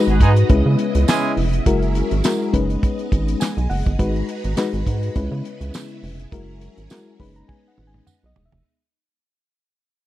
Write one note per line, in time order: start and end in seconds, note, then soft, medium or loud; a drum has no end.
0.00 0.48 G#3 medium
0.00 1.64 G#3 medium
0.00 0.50 D#4 medium
0.00 0.48 F#4 medium
0.00 0.50 F#4 medium
0.00 0.48 B4 medium
0.00 0.49 B4 loud
0.00 1.64 D#5 medium
0.00 0.48 A#5 medium
0.07 0.22 G#1 medium
0.07 0.18 B3 medium
0.07 0.18 F#4 medium
0.07 0.18 G#4 medium
0.07 0.18 B4 medium
0.07 closed hi-hat soft
0.20 0.44 G#2 medium
0.20 0.31 G#3 medium
0.20 0.30 B3 medium
0.20 0.31 D#4 medium
0.20 0.31 G#4 medium
0.20 kick medium
0.20 closed hi-hat medium
0.36 closed hi-hat medium
0.49 0.63 C#2 loud
0.49 1.65 C#3 medium
0.49 1.43 G#3 medium
0.49 1.65 B3 medium
0.49 1.43 C#4 medium
0.49 1.44 E4 medium
0.49 2.52 E4 medium
0.49 1.44 B4 medium
0.49 kick loud
0.49 closed hi-hat medium
0.66 0.76 C#3 medium
0.79 closed hi-hat medium
0.95 1.05 C#2 medium
0.95 closed hi-hat medium
1.08 1.31 G#3 loud
1.08 1.31 C#4 loud
1.08 1.31 E4 loud
1.08 1.31 G#4 loud
1.08 snare loud
1.08 clap medium
1.08 closed hi-hat medium
1.08 tambourine medium
1.37 1.60 F1 medium
1.37 open hi-hat medium
1.53 closed hi-hat medium
1.66 2.02 F#1 loud
1.66 2.53 F#3 medium
1.66 2.13 G#3 medium
1.66 2.53 C#4 medium
1.66 2.14 E4 medium
1.66 2.14 F#4 medium
1.66 2.53 G#4 medium
1.66 2.53 A#4 medium
1.66 2.14 A#4 medium
1.66 kick loud
1.66 closed hi-hat medium
1.82 closed hi-hat soft
1.95 closed hi-hat medium
2.11 2.22 G#1 loud
2.11 closed hi-hat medium
2.24 2.52 G#3 medium
2.24 2.54 E4 medium
2.24 2.54 F#4 medium
2.24 2.54 A#4 loud
2.24 snare loud
2.24 clap loud
2.24 closed hi-hat loud
2.24 tambourine medium
2.53 2.77 F#1 medium
2.53 3.47 G#3 medium
2.53 6.29 G#3 medium
2.53 3.98 B3 medium
2.53 3.47 C#4 medium
2.53 3.47 D#4 medium
2.53 3.47 B4 loud
2.53 6.29 D#5 medium
2.53 kick medium
2.53 closed hi-hat medium
2.70 closed hi-hat soft
2.83 kick loud
2.83 closed hi-hat medium
2.99 closed hi-hat soft
3.12 3.35 G#1 medium
3.12 kick medium
3.12 closed hi-hat medium
3.28 closed hi-hat medium
3.40 3.68 G#5 medium
3.40 snare loud
3.40 clap medium
3.40 closed hi-hat medium
3.40 tambourine loud
3.57 3.67 B1 loud
3.57 closed hi-hat soft
3.70 3.83 F#1 loud
3.70 3.97 F#5 medium
3.70 open hi-hat medium
3.86 3.97 G1 medium
3.86 kick medium
3.86 closed hi-hat soft
3.99 4.23 G#1 loud
3.99 4.46 G#3 medium
3.99 4.46 D#4 medium
3.99 4.46 F#4 medium
3.99 5.15 F#4 medium
3.99 5.15 B4 medium
3.99 4.47 B4 loud
3.99 5.15 A#5 medium
3.99 kick loud
3.99 closed hi-hat medium
4.16 closed hi-hat soft
4.29 closed hi-hat medium
4.44 4.55 G#1 loud
4.44 closed hi-hat medium
4.57 5.14 G#3 medium
4.57 5.16 D#4 medium
4.57 5.16 F#4 medium
4.57 5.15 B4 loud
4.57 snare loud
4.57 clap loud
4.57 closed hi-hat loud
4.57 tambourine medium
4.73 4.84 G#1 loud
4.73 closed hi-hat soft
4.87 5.10 G#2 medium
4.87 kick medium
4.87 closed hi-hat medium
5.03 closed hi-hat soft
5.16 5.29 C#2 loud
5.16 6.31 C#3 medium
5.16 6.09 G#3 medium
5.16 6.31 B3 medium
5.16 6.10 C#4 medium
5.16 7.18 E4 medium
5.16 6.10 E4 medium
5.16 6.10 B4 loud
5.16 kick medium
5.16 closed hi-hat medium
5.31 5.42 C#3 medium
5.45 closed hi-hat medium
5.61 5.71 C#2 medium
5.61 closed hi-hat medium
5.74 snare loud
5.74 clap medium
5.74 closed hi-hat medium
5.74 tambourine loud
6.03 6.26 F1 medium
6.03 open hi-hat medium
6.20 closed hi-hat soft
6.32 6.68 F#1 loud
6.32 7.19 F#3 medium
6.32 6.79 G#3 medium
6.32 7.19 C#4 medium
6.32 6.79 E4 medium
6.32 6.79 F#4 medium
6.32 7.19 G#4 medium
6.32 6.80 A#4 loud
6.32 7.19 A#4 medium
6.32 kick loud
6.32 closed hi-hat medium
6.61 closed hi-hat medium
6.77 6.88 G#1 medium
6.77 closed hi-hat medium
6.90 7.18 G#3 medium
6.90 7.19 E4 medium
6.90 7.20 F#4 medium
6.90 7.20 A#4 loud
6.90 snare loud
6.90 clap loud
6.90 closed hi-hat loud
6.90 tambourine medium
7.20 7.43 F#1 loud
7.20 8.13 G#3 medium
7.20 8.64 G#3 medium
7.20 8.64 B3 medium
7.20 8.14 C#4 medium
7.20 8.14 D#4 medium
7.20 8.64 D#4 medium
7.20 8.14 B4 medium
7.20 7.35 B5 medium
7.20 kick medium
7.20 open hi-hat medium
7.36 7.48 A#5 medium
7.36 closed hi-hat soft
7.48 7.67 G#5 medium
7.48 kick loud
7.48 high tom medium
7.68 7.86 F#5 medium
7.78 8.01 G#1 loud
7.78 mid tom medium
7.87 8.05 G#5 medium
7.94 mid tom medium
8.06 8.25 F#5 medium
8.06 mid tom medium
8.06 tambourine medium
8.23 8.34 B1 medium
8.23 8.44 D#5 medium
8.36 8.49 E1 medium
8.36 floor tom medium
8.46 8.64 E5 medium
8.52 8.63 F1 medium
8.52 floor tom medium